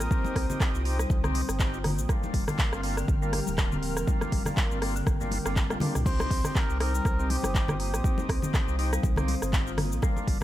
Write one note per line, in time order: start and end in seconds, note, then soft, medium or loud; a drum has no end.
0.00 0.82 A#4 loud
0.00 2.05 C5 medium
0.00 2.05 G5 medium
0.00 2.06 D#6 loud
0.00 cross-stick medium
0.00 cabasa medium
0.11 0.24 C4 medium
0.11 0.46 C4 medium
0.11 0.46 D#4 medium
0.11 0.46 G4 medium
0.11 kick loud
0.11 high conga loud
0.11 cabasa medium
0.24 high conga loud
0.24 cabasa soft
0.36 0.46 C2 loud
0.36 kick medium
0.36 cross-stick medium
0.36 open hi-hat medium
0.50 0.83 C4 medium
0.50 0.83 D#4 medium
0.50 0.83 G4 medium
0.50 high conga medium
0.50 low conga loud
0.50 cabasa medium
0.60 kick loud
0.60 cross-stick medium
0.60 clap loud
0.60 cabasa medium
0.74 1.05 C2 loud
0.74 0.85 F4 medium
0.74 cabasa soft
0.85 0.98 C4 medium
0.85 0.98 D#4 medium
0.85 0.98 G4 loud
0.85 open hi-hat medium
0.99 1.05 G3 loud
0.99 cross-stick medium
0.99 cabasa medium
1.10 1.42 C2 loud
1.10 kick loud
1.10 high conga loud
1.10 cabasa medium
1.24 1.34 C4 loud
1.24 1.41 C4 medium
1.24 1.41 D#4 medium
1.24 1.42 G4 loud
1.24 cross-stick medium
1.24 low conga medium
1.24 cabasa soft
1.34 1.42 C5 medium
1.34 open hi-hat medium
1.34 high conga medium
1.49 2.00 G1 loud
1.49 cross-stick medium
1.49 cabasa medium
1.60 1.79 C4 medium
1.60 1.79 D#4 medium
1.60 1.79 G4 medium
1.60 kick loud
1.60 clap loud
1.60 cabasa medium
1.73 1.84 F4 medium
1.73 cabasa soft
1.84 1.98 A#3 medium
1.84 cross-stick medium
1.84 open hi-hat medium
1.84 high conga medium
1.84 low conga loud
1.98 2.06 A#1 medium
1.98 cabasa medium
2.09 2.22 G3 medium
2.09 2.45 A#3 medium
2.09 2.45 D4 medium
2.09 2.45 F4 medium
2.09 6.02 A#4 medium
2.09 8.00 G5 medium
2.09 6.02 F6 loud
2.09 kick loud
2.09 cross-stick medium
2.09 high conga loud
2.09 cabasa medium
2.23 high conga loud
2.23 cabasa soft
2.34 2.44 G1 loud
2.34 2.46 G3 medium
2.34 kick medium
2.34 open hi-hat medium
2.48 2.81 A#3 medium
2.48 2.81 D4 medium
2.48 2.81 F4 medium
2.48 cross-stick medium
2.48 low conga loud
2.48 cabasa medium
2.59 kick loud
2.59 clap loud
2.59 cabasa medium
2.73 3.03 G1 loud
2.73 2.83 C4 medium
2.73 cross-stick medium
2.73 cabasa soft
2.83 2.96 A#3 medium
2.83 2.96 D4 medium
2.83 2.96 F4 loud
2.83 open hi-hat medium
2.97 3.03 D3 loud
2.97 cross-stick medium
2.97 cabasa medium
3.08 3.41 G1 loud
3.08 kick loud
3.08 cabasa medium
3.22 3.33 G3 loud
3.22 3.40 A#3 medium
3.22 3.40 D4 medium
3.22 3.40 F4 medium
3.22 cabasa soft
3.33 3.41 G4 medium
3.33 cross-stick medium
3.33 open hi-hat medium
3.33 high conga medium
3.47 3.98 D1 loud
3.47 high conga medium
3.47 cabasa medium
3.58 3.77 A#3 medium
3.58 3.77 D4 medium
3.58 3.77 F4 medium
3.58 kick loud
3.58 cross-stick medium
3.58 clap loud
3.58 cabasa medium
3.72 3.82 C4 medium
3.72 low conga loud
3.72 cabasa soft
3.83 3.96 F3 medium
3.83 open hi-hat medium
3.97 4.05 F1 medium
3.97 cross-stick medium
3.97 cabasa medium
4.08 4.20 G3 medium
4.08 4.43 A#3 medium
4.08 4.43 D4 medium
4.08 4.43 F4 medium
4.08 kick loud
4.08 high conga loud
4.08 cabasa medium
4.21 cross-stick medium
4.21 high conga loud
4.21 cabasa soft
4.32 4.42 G1 loud
4.32 4.45 G3 medium
4.32 kick medium
4.32 open hi-hat medium
4.46 4.79 A#3 medium
4.46 4.79 D4 medium
4.46 4.79 F4 medium
4.46 cross-stick medium
4.46 high conga medium
4.46 low conga loud
4.46 cabasa medium
4.57 kick loud
4.57 clap loud
4.57 cabasa medium
4.71 5.02 G1 loud
4.71 4.81 C4 medium
4.71 cabasa soft
4.82 4.95 A#3 medium
4.82 4.95 D4 medium
4.82 4.95 F4 loud
4.82 cross-stick medium
4.82 open hi-hat medium
4.96 5.02 D3 loud
4.96 cabasa medium
5.07 5.39 G1 loud
5.07 kick loud
5.07 cross-stick medium
5.07 high conga loud
5.07 cabasa medium
5.21 5.31 G3 loud
5.21 5.38 A#3 medium
5.21 5.38 D4 medium
5.21 5.38 F4 loud
5.21 low conga medium
5.21 cabasa soft
5.31 open hi-hat medium
5.31 high conga loud
5.45 5.76 G1 loud
5.45 5.67 A#3 medium
5.45 5.51 C4 medium
5.45 5.67 D4 medium
5.45 5.67 F4 loud
5.45 cross-stick medium
5.45 cabasa medium
5.56 5.70 G3 medium
5.56 kick loud
5.56 clap loud
5.56 cabasa medium
5.70 5.79 A#3 loud
5.70 5.79 D4 medium
5.70 5.80 F4 medium
5.70 5.79 F4 loud
5.70 cross-stick loud
5.70 high tom medium
5.70 cabasa soft
5.80 5.94 A#3 medium
5.80 5.94 D4 medium
5.80 5.94 F4 loud
5.80 open hi-hat medium
5.80 mid tom medium
5.80 high conga medium
5.80 low conga loud
5.95 6.26 C2 loud
5.95 cross-stick medium
5.95 mid tom medium
5.95 cabasa medium
6.06 6.18 C4 medium
6.06 6.41 C4 medium
6.06 6.41 D#4 medium
6.06 6.41 G4 medium
6.06 9.99 C5 medium
6.06 6.58 C5 loud
6.06 9.99 D#6 medium
6.06 kick loud
6.06 crash medium
6.06 high conga loud
6.06 cabasa medium
6.20 cross-stick loud
6.20 high conga loud
6.20 cabasa soft
6.31 6.41 C2 loud
6.31 6.43 C4 medium
6.31 kick medium
6.31 open hi-hat medium
6.44 6.78 C4 medium
6.44 6.78 D#4 medium
6.44 6.78 G4 medium
6.44 cross-stick medium
6.44 low conga loud
6.44 cabasa medium
6.55 6.80 A#4 loud
6.55 kick loud
6.55 clap loud
6.55 cabasa medium
6.69 7.00 C2 loud
6.69 6.75 G3 medium
6.69 cabasa soft
6.80 6.93 C4 medium
6.80 6.93 D#4 medium
6.80 6.93 G4 loud
6.80 7.32 A#4 loud
6.80 cross-stick loud
6.80 open hi-hat medium
6.94 7.00 G3 loud
6.94 cabasa medium
7.05 7.38 C2 loud
7.05 kick loud
7.05 cross-stick medium
7.05 cabasa medium
7.19 7.29 C4 loud
7.19 7.37 C4 medium
7.19 7.37 D#4 medium
7.19 7.37 G4 medium
7.19 cabasa soft
7.30 7.80 G4 loud
7.30 7.38 C5 medium
7.30 open hi-hat medium
7.30 high conga medium
7.43 7.95 G1 loud
7.43 cross-stick loud
7.43 high conga medium
7.43 cabasa medium
7.55 7.74 C4 medium
7.55 7.74 D#4 medium
7.55 7.74 G4 medium
7.55 kick loud
7.55 clap loud
7.55 cabasa medium
7.68 7.79 F4 medium
7.68 cross-stick loud
7.68 low conga loud
7.68 cabasa soft
7.80 7.93 A#3 medium
7.80 8.50 G4 medium
7.80 open hi-hat medium
7.94 8.01 A#1 medium
7.94 cross-stick medium
7.94 cabasa medium
8.04 8.17 C4 medium
8.04 8.40 C4 medium
8.04 8.40 D#4 medium
8.04 8.40 G4 medium
8.04 10.01 F5 medium
8.04 kick loud
8.04 high conga loud
8.04 cabasa medium
8.18 high conga loud
8.18 cabasa soft
8.29 8.39 C2 loud
8.29 8.42 C4 medium
8.29 kick medium
8.29 cross-stick loud
8.29 open hi-hat medium
8.42 8.76 C4 medium
8.42 8.76 D#4 medium
8.42 8.76 G4 medium
8.42 high conga medium
8.42 low conga loud
8.42 cabasa medium
8.54 kick loud
8.54 cross-stick medium
8.54 clap loud
8.54 cabasa medium
8.68 8.99 C2 loud
8.68 8.74 G3 medium
8.68 cabasa soft
8.79 8.92 C4 medium
8.79 8.92 D#4 medium
8.79 8.91 D#4 medium
8.79 8.92 G4 loud
8.79 open hi-hat medium
8.93 8.99 G3 loud
8.93 cross-stick loud
8.93 cabasa medium
9.03 9.36 C2 medium
9.03 kick loud
9.03 high conga loud
9.03 cabasa medium
9.16 9.35 C4 medium
9.16 9.28 C4 loud
9.16 9.35 D#4 medium
9.16 9.35 G4 loud
9.16 cross-stick loud
9.16 low conga loud
9.16 cabasa soft
9.28 9.36 C5 medium
9.28 open hi-hat medium
9.28 high conga loud
9.42 9.93 G1 loud
9.42 cross-stick medium
9.42 cabasa medium
9.53 9.72 C4 medium
9.53 9.72 D#4 medium
9.53 9.72 G4 medium
9.53 kick loud
9.53 clap loud
9.53 cabasa medium
9.67 9.77 F4 medium
9.67 cabasa soft
9.78 9.91 A#3 medium
9.78 cross-stick loud
9.78 open hi-hat medium
9.78 high conga medium
9.78 low conga loud
9.92 10.00 A#1 medium
9.92 cabasa medium
10.02 10.15 G3 medium
10.02 10.38 A#3 medium
10.02 10.38 D4 medium
10.02 10.38 F4 medium
10.02 10.43 A#4 medium
10.02 10.43 G5 medium
10.02 10.43 F6 loud
10.02 kick loud
10.02 cross-stick medium
10.02 high conga loud
10.02 cabasa medium
10.16 high conga loud
10.16 cabasa soft
10.27 10.37 G1 loud
10.27 10.40 G3 medium
10.27 kick medium
10.27 open hi-hat medium